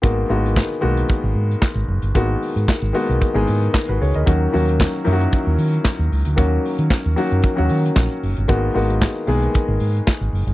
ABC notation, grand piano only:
X:1
M:4/4
L:1/16
Q:1/4=114
K:G#m
V:1 name="Grand piano"
z16 | z12 z [FB] [Gc] [Ad]- | [Ad] z12 z3 | z16 |
z16 |]
V:2 name="Grand piano"
[D,G,A,B,F]2 [D,G,A,B,F]3 z [D,G,A,B,F]6- [D,G,A,B,F] z3 | [D,G,A,B,F]4- [D,G,A,B,F] z [D,G,A,B,F]3 [D,G,A,B,G]6 z | [D,F,A,CF]2 [D,F,A,CF]3 z [D,F,A,CEF]6- [D,F,A,CEF] z3 | [D,F,A,CF]4- [D,F,A,CF] z [D,F,A,CF]3 [D,F,A,CF]6 z |
[D,G,A,B,F]2 [D,G,A,B,F]3 z [D,G,A,B,G]6- [D,G,A,B,G] z3 |]